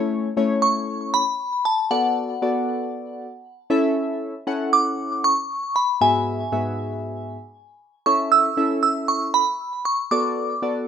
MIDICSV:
0, 0, Header, 1, 3, 480
1, 0, Start_track
1, 0, Key_signature, 3, "major"
1, 0, Tempo, 512821
1, 1786, Time_signature, 4, 2, 24, 8
1, 10181, End_track
2, 0, Start_track
2, 0, Title_t, "Synth bell"
2, 0, Program_c, 0, 98
2, 581, Note_on_c, 0, 85, 108
2, 1030, Note_off_c, 0, 85, 0
2, 1065, Note_on_c, 0, 83, 102
2, 1511, Note_off_c, 0, 83, 0
2, 1547, Note_on_c, 0, 81, 92
2, 1786, Note_on_c, 0, 78, 81
2, 1794, Note_off_c, 0, 81, 0
2, 3188, Note_off_c, 0, 78, 0
2, 4427, Note_on_c, 0, 86, 109
2, 4907, Note_on_c, 0, 85, 104
2, 4921, Note_off_c, 0, 86, 0
2, 5389, Note_on_c, 0, 83, 90
2, 5401, Note_off_c, 0, 85, 0
2, 5611, Note_off_c, 0, 83, 0
2, 5630, Note_on_c, 0, 80, 86
2, 7031, Note_off_c, 0, 80, 0
2, 7544, Note_on_c, 0, 85, 101
2, 7784, Note_on_c, 0, 88, 104
2, 7792, Note_off_c, 0, 85, 0
2, 8251, Note_off_c, 0, 88, 0
2, 8262, Note_on_c, 0, 88, 98
2, 8502, Note_on_c, 0, 85, 97
2, 8511, Note_off_c, 0, 88, 0
2, 8727, Note_off_c, 0, 85, 0
2, 8742, Note_on_c, 0, 83, 94
2, 9190, Note_off_c, 0, 83, 0
2, 9223, Note_on_c, 0, 85, 92
2, 9465, Note_on_c, 0, 86, 89
2, 9472, Note_off_c, 0, 85, 0
2, 10181, Note_off_c, 0, 86, 0
2, 10181, End_track
3, 0, Start_track
3, 0, Title_t, "Synth keys"
3, 0, Program_c, 1, 88
3, 0, Note_on_c, 1, 57, 88
3, 0, Note_on_c, 1, 61, 81
3, 0, Note_on_c, 1, 64, 77
3, 0, Note_on_c, 1, 73, 95
3, 265, Note_off_c, 1, 57, 0
3, 266, Note_off_c, 1, 61, 0
3, 266, Note_off_c, 1, 64, 0
3, 267, Note_off_c, 1, 73, 0
3, 344, Note_on_c, 1, 57, 85
3, 347, Note_on_c, 1, 61, 80
3, 347, Note_on_c, 1, 64, 77
3, 348, Note_on_c, 1, 73, 92
3, 1139, Note_off_c, 1, 57, 0
3, 1141, Note_off_c, 1, 61, 0
3, 1141, Note_off_c, 1, 64, 0
3, 1142, Note_off_c, 1, 73, 0
3, 1784, Note_on_c, 1, 59, 73
3, 1786, Note_on_c, 1, 66, 66
3, 1787, Note_on_c, 1, 69, 67
3, 1790, Note_on_c, 1, 74, 78
3, 2185, Note_off_c, 1, 59, 0
3, 2186, Note_off_c, 1, 66, 0
3, 2187, Note_off_c, 1, 69, 0
3, 2189, Note_off_c, 1, 74, 0
3, 2264, Note_on_c, 1, 59, 75
3, 2265, Note_on_c, 1, 66, 68
3, 2266, Note_on_c, 1, 69, 65
3, 2269, Note_on_c, 1, 74, 80
3, 3060, Note_off_c, 1, 59, 0
3, 3060, Note_off_c, 1, 66, 0
3, 3061, Note_off_c, 1, 69, 0
3, 3062, Note_off_c, 1, 74, 0
3, 3462, Note_on_c, 1, 61, 89
3, 3464, Note_on_c, 1, 64, 84
3, 3465, Note_on_c, 1, 69, 88
3, 3467, Note_on_c, 1, 76, 102
3, 4064, Note_off_c, 1, 61, 0
3, 4064, Note_off_c, 1, 64, 0
3, 4065, Note_off_c, 1, 69, 0
3, 4066, Note_off_c, 1, 76, 0
3, 4183, Note_on_c, 1, 61, 86
3, 4183, Note_on_c, 1, 64, 77
3, 4185, Note_on_c, 1, 69, 75
3, 4187, Note_on_c, 1, 78, 92
3, 4979, Note_off_c, 1, 61, 0
3, 4979, Note_off_c, 1, 64, 0
3, 4980, Note_off_c, 1, 69, 0
3, 4981, Note_off_c, 1, 78, 0
3, 5623, Note_on_c, 1, 44, 73
3, 5625, Note_on_c, 1, 59, 67
3, 5627, Note_on_c, 1, 66, 65
3, 5628, Note_on_c, 1, 68, 64
3, 5628, Note_on_c, 1, 76, 83
3, 6025, Note_off_c, 1, 44, 0
3, 6026, Note_off_c, 1, 59, 0
3, 6027, Note_off_c, 1, 66, 0
3, 6027, Note_off_c, 1, 68, 0
3, 6027, Note_off_c, 1, 76, 0
3, 6103, Note_on_c, 1, 44, 71
3, 6105, Note_on_c, 1, 59, 68
3, 6106, Note_on_c, 1, 66, 65
3, 6106, Note_on_c, 1, 68, 65
3, 6108, Note_on_c, 1, 76, 77
3, 6899, Note_off_c, 1, 44, 0
3, 6900, Note_off_c, 1, 59, 0
3, 6901, Note_off_c, 1, 66, 0
3, 6901, Note_off_c, 1, 68, 0
3, 6901, Note_off_c, 1, 76, 0
3, 7544, Note_on_c, 1, 61, 73
3, 7545, Note_on_c, 1, 64, 69
3, 7546, Note_on_c, 1, 69, 67
3, 7549, Note_on_c, 1, 76, 79
3, 7945, Note_off_c, 1, 61, 0
3, 7946, Note_off_c, 1, 64, 0
3, 7946, Note_off_c, 1, 69, 0
3, 7948, Note_off_c, 1, 76, 0
3, 8021, Note_on_c, 1, 61, 75
3, 8024, Note_on_c, 1, 64, 66
3, 8024, Note_on_c, 1, 69, 68
3, 8025, Note_on_c, 1, 76, 79
3, 8818, Note_off_c, 1, 61, 0
3, 8819, Note_off_c, 1, 64, 0
3, 8820, Note_off_c, 1, 69, 0
3, 8820, Note_off_c, 1, 76, 0
3, 9464, Note_on_c, 1, 59, 71
3, 9465, Note_on_c, 1, 66, 71
3, 9467, Note_on_c, 1, 69, 67
3, 9470, Note_on_c, 1, 74, 80
3, 9865, Note_off_c, 1, 59, 0
3, 9866, Note_off_c, 1, 66, 0
3, 9867, Note_off_c, 1, 69, 0
3, 9868, Note_off_c, 1, 74, 0
3, 9942, Note_on_c, 1, 59, 74
3, 9944, Note_on_c, 1, 66, 65
3, 9947, Note_on_c, 1, 69, 67
3, 9947, Note_on_c, 1, 74, 82
3, 10181, Note_off_c, 1, 59, 0
3, 10181, Note_off_c, 1, 66, 0
3, 10181, Note_off_c, 1, 69, 0
3, 10181, Note_off_c, 1, 74, 0
3, 10181, End_track
0, 0, End_of_file